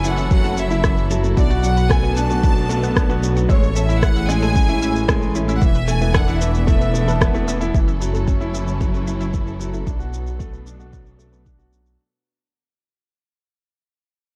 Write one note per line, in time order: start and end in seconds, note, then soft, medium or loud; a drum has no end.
0.00 1.34 F#1 medium
0.00 0.31 F#3 loud
0.00 1.37 F#3 medium
0.00 0.44 A3 medium
0.00 0.57 C#4 medium
0.00 1.37 C#4 medium
0.00 0.71 E4 loud
0.00 2.22 E4 medium
0.00 3.49 A4 medium
0.04 0.17 E3 medium
0.04 0.09 E4 medium
0.04 0.30 F#5 loud
0.04 shaker medium
0.18 0.25 E5 medium
0.18 shaker soft
0.31 0.44 F#3 loud
0.31 0.56 F#5 loud
0.31 kick loud
0.31 shaker soft
0.44 0.57 A3 medium
0.44 0.49 A4 medium
0.44 shaker soft
0.57 0.70 C#4 medium
0.57 1.11 E5 medium
0.57 shaker medium
0.71 0.83 E4 loud
0.71 0.76 E4 medium
0.71 shaker soft
0.84 0.96 E3 medium
0.84 0.92 E5 medium
0.84 kick loud
0.84 cross-stick medium
0.84 shaker soft
0.97 shaker soft
1.11 1.23 F#3 loud
1.11 1.16 A4 medium
1.11 shaker medium
1.23 1.36 A3 medium
1.23 shaker soft
1.37 3.47 B1 medium
1.37 3.50 B2 medium
1.37 1.50 D4 medium
1.37 1.42 F#4 medium
1.37 1.62 D5 medium
1.37 kick loud
1.37 shaker soft
1.50 3.50 D4 medium
1.50 1.63 F#4 loud
1.50 1.58 F#5 medium
1.50 shaker soft
1.63 1.76 F#3 medium
1.63 4.35 B3 loud
1.63 1.90 F#5 loud
1.63 shaker medium
1.77 1.82 B4 medium
1.77 shaker soft
1.90 2.02 A3 loud
1.90 2.17 G#5 loud
1.90 kick loud
1.90 cross-stick medium
1.90 shaker soft
2.03 2.16 B3 medium
2.03 2.08 F#4 medium
2.03 shaker soft
2.16 2.29 D4 medium
2.16 2.24 F#5 medium
2.16 3.23 A5 loud
2.16 shaker medium
2.30 2.43 F#4 loud
2.30 shaker soft
2.43 2.56 F#3 medium
2.43 2.48 B4 medium
2.43 kick loud
2.43 shaker soft
2.57 shaker soft
2.69 2.82 A3 loud
2.69 2.75 F#4 medium
2.69 shaker medium
2.83 2.96 B3 medium
2.83 2.91 F#5 medium
2.83 shaker soft
2.96 3.09 D4 medium
2.96 kick loud
2.96 cross-stick medium
2.96 shaker soft
3.09 3.22 F#4 loud
3.09 3.15 B4 medium
3.09 shaker soft
3.22 3.35 F#3 medium
3.22 shaker medium
3.36 3.41 F#4 medium
3.36 shaker soft
3.49 5.59 A1 medium
3.49 5.62 A2 medium
3.49 3.62 G#3 loud
3.49 3.74 C#5 medium
3.49 3.57 E5 medium
3.49 kick loud
3.49 shaker soft
3.63 3.75 A3 medium
3.63 5.62 C#4 medium
3.63 shaker soft
3.75 3.88 C#4 medium
3.75 5.62 G#4 medium
3.75 3.81 A4 medium
3.75 4.02 E5 loud
3.75 shaker medium
3.89 4.02 E4 loud
3.89 shaker soft
4.02 4.15 E3 medium
4.02 4.08 E4 medium
4.02 4.29 F#5 loud
4.02 kick loud
4.02 cross-stick medium
4.02 shaker soft
4.16 4.23 E5 medium
4.16 shaker soft
4.28 4.42 G#3 loud
4.28 5.35 G#5 loud
4.28 shaker medium
4.42 4.55 A3 medium
4.42 4.47 A4 medium
4.42 shaker soft
4.55 4.68 C#4 medium
4.55 kick loud
4.55 shaker soft
4.69 4.81 E4 loud
4.69 4.74 E4 medium
4.69 shaker soft
4.82 4.95 E3 medium
4.82 4.90 E5 medium
4.82 shaker medium
4.96 shaker soft
5.08 5.21 G#3 loud
5.08 5.14 A4 medium
5.08 kick loud
5.08 cross-stick loud
5.08 shaker soft
5.21 5.34 A3 medium
5.21 shaker soft
5.35 5.48 C#4 medium
5.35 5.40 E4 medium
5.35 shaker medium
5.48 5.61 E4 loud
5.48 5.56 E5 medium
5.48 shaker soft
5.55 5.62 F#5 medium
5.61 7.72 E1 medium
5.61 5.74 E3 medium
5.61 7.74 E3 medium
5.61 5.88 E5 loud
5.61 kick loud
5.61 shaker soft
5.75 5.80 B4 medium
5.75 shaker soft
5.88 6.01 A3 loud
5.88 6.15 G#5 loud
5.88 shaker medium
5.94 8.59 B3 medium
6.01 6.14 B3 medium
6.01 6.07 E4 medium
6.01 shaker soft
6.13 7.74 D4 medium
6.13 6.27 D4 medium
6.13 6.22 E5 medium
6.13 6.41 F#5 loud
6.13 kick loud
6.13 cross-stick loud
6.13 shaker soft
6.28 6.41 E4 loud
6.28 shaker soft
6.41 6.54 E3 medium
6.41 6.46 B4 medium
6.41 7.47 E5 medium
6.41 shaker medium
6.55 11.99 A4 medium
6.55 shaker soft
6.67 6.80 A3 loud
6.67 6.73 E4 medium
6.67 kick loud
6.67 shaker soft
6.81 6.94 B3 medium
6.81 6.89 E5 medium
6.81 shaker soft
6.94 7.02 A3 loud
6.94 shaker medium
7.08 7.20 A4 loud
7.08 7.13 B4 medium
7.08 shaker soft
7.21 7.34 B3 loud
7.21 kick loud
7.21 cross-stick loud
7.21 shaker soft
7.34 7.46 A3 loud
7.34 7.40 E4 medium
7.34 shaker soft
7.48 7.60 A3 medium
7.48 7.55 E5 medium
7.48 shaker medium
7.61 7.74 E4 loud
7.61 shaker soft
7.74 9.84 F#1 medium
7.74 7.87 E3 medium
7.74 9.87 F#3 medium
7.74 7.79 E4 medium
7.74 kick loud
7.74 shaker soft
7.81 9.87 C#4 medium
7.81 10.61 E4 medium
7.88 7.95 E5 medium
7.88 shaker soft
8.01 8.13 F#3 medium
8.01 shaker medium
8.14 8.26 A3 medium
8.14 8.19 A4 medium
8.14 shaker soft
8.27 8.40 C#4 medium
8.27 kick loud
8.27 shaker soft
8.41 8.53 E4 medium
8.41 8.46 E4 medium
8.41 shaker soft
8.54 8.66 E3 medium
8.54 8.61 E5 medium
8.54 shaker medium
8.68 shaker soft
8.80 8.93 F#3 medium
8.80 8.86 A4 medium
8.80 kick loud
8.80 shaker soft
8.94 9.06 A3 medium
8.94 shaker soft
9.07 9.20 C#4 medium
9.07 9.12 E4 medium
9.07 shaker medium
9.20 9.33 E4 medium
9.20 9.28 E5 medium
9.20 shaker soft
9.33 9.46 E3 medium
9.33 kick medium
9.33 shaker soft
9.47 9.52 A4 medium
9.47 shaker soft
9.60 9.72 F#3 medium
9.60 shaker medium
9.73 9.86 A3 medium
9.73 9.79 E4 medium
9.73 shaker soft
9.86 11.97 B1 medium
9.86 11.99 B2 medium
9.86 9.99 D4 medium
9.86 kick loud
9.86 shaker soft
9.99 11.99 B3 medium
9.99 10.12 F#4 medium
9.99 shaker soft
10.13 10.26 F#3 medium
10.13 shaker medium
10.27 12.00 D4 medium
10.27 shaker soft
10.39 10.52 A3 medium
10.39 kick medium
10.39 shaker soft
10.53 10.65 B3 medium
10.53 shaker soft
10.66 10.79 D4 medium
10.66 shaker medium
10.79 10.92 F#4 medium
10.79 shaker soft
10.92 11.05 F#3 medium
10.92 kick medium
10.92 shaker soft
11.06 shaker soft
11.19 11.32 A3 medium
11.19 shaker medium
11.32 11.45 B3 medium
11.32 shaker soft
11.45 11.58 D4 medium
11.45 kick medium
11.45 shaker soft
11.58 11.71 F#4 medium
11.58 shaker soft
11.72 11.85 F#3 medium
11.72 shaker medium
11.86 shaker soft